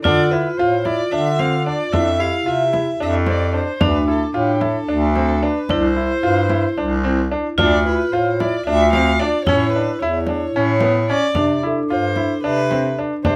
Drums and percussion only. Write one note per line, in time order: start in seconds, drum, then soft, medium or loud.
0.05 frame drum medium
0.32 frame drum soft
0.59 frame drum soft
0.85 frame drum soft
1.12 frame drum soft
1.39 frame drum soft
1.93 frame drum medium
2.73 frame drum soft
3.00 frame drum soft
3.27 frame drum medium
3.81 frame drum medium
4.07 frame drum soft
4.36 frame drum soft
4.61 frame drum medium
4.89 frame drum soft
5.16 frame drum soft
5.69 frame drum medium
5.97 frame drum soft
6.24 frame drum soft
6.50 frame drum medium
6.77 frame drum soft
7.58 frame drum medium
7.86 frame drum soft
8.13 frame drum soft
8.40 frame drum medium
8.66 frame drum soft
8.93 frame drum medium
9.47 frame drum medium
9.74 frame drum soft
10.01 frame drum soft
10.27 frame drum medium
10.81 frame drum medium
11.35 frame drum medium
12.16 frame drum soft
12.71 frame drum medium
12.98 frame drum soft
13.25 frame drum medium